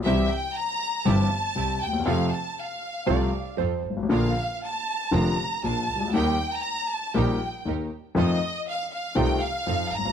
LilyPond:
<<
  \new Staff \with { instrumentName = "Violin section" } { \time 4/4 \key f \mixolydian \tempo 4 = 119 e''8 g''8 bes''4 a''4. g''8 | f''8 a''8 f''2 r4 | f''4 a''4 bes''4 a''4 | g''8. bes''8. a''8 g''4 r4 |
ees''4 f''8 f''8 g''8 f''4 bes''8 | }
  \new Staff \with { instrumentName = "Hollow-body jazz guitar" } { \time 4/4 \key f \mixolydian r1 | r2 d''4 c''8. r16 | r1 | r1 |
r1 | }
  \new Staff \with { instrumentName = "String section" } { \time 4/4 \key f \mixolydian <c' e' g'>8 r4. <c' e' g'>8 r8 <c' e' g'>8 r8 | <c' f' a'>8 r4. <c' f' a'>8 r8 <c' f' a'>8 r8 | <d' f' bes'>8 r4. <d' f' bes'>8 r8 <d' f' bes'>8 r8 | <ees' g' bes'>8 r4. <ees' g' bes'>8 r8 <ees' g' bes'>8 r8 |
<ees' f' a'>8 r4. <ees' f' a'>8 r8 <ees' f' a'>8 r8 | }
  \new Staff \with { instrumentName = "Grand piano" } { \clef bass \time 4/4 \key f \mixolydian <c, c e g c' g'>8 r4. <g,, g, e g c' g'>8 r8 <c, c>8 r32 d,32 ees,32 e,32 | <f, c f a f'>8 r4. <c, c f a f'>8 r8 <f, f>8 r32 g,,32 aes,,32 a,,32 | <bes,, bes, d f bes f'>8 r4. <f,, f, d f bes f'>8 r8 <bes,, bes,>8 r32 c,32 des,32 d,32 | <ees, ees g bes g'>8 r4. <bes,, bes, ees g bes g'>8 r8 <ees, ees>8 r8 |
<f, ees f a c' f'>8 r4. <c, c ees a c' f'>8 r8 <f, f>8 r32 g,,32 aes,,32 r32 | }
  \new Staff \with { instrumentName = "Double bass" } { \clef bass \time 4/4 \key f \mixolydian c,8 r4. g,,8 r8 c,8 ees,8 | f,8 r4. c,8 r8 f,8 aes,,8 | bes,,8 r4. f,,8 r8 bes,,8 des,8 | ees,8 r4. bes,,8 r8 ees,8 r8 |
f,8 r4. c,8 r8 f,8 aes,,8 | }
>>